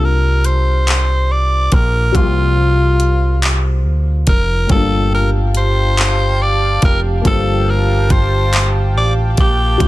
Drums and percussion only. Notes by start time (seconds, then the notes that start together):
0.45 closed hi-hat
0.88 clap, closed hi-hat
1.72 kick, closed hi-hat
2.15 kick, closed hi-hat
3.00 closed hi-hat
3.43 clap, closed hi-hat
4.27 kick, closed hi-hat
4.69 kick, closed hi-hat
5.55 closed hi-hat
5.98 clap, closed hi-hat
6.82 kick, closed hi-hat
7.25 kick, closed hi-hat
8.10 kick, closed hi-hat
8.53 clap, closed hi-hat
9.37 kick, closed hi-hat
9.80 kick, closed hi-hat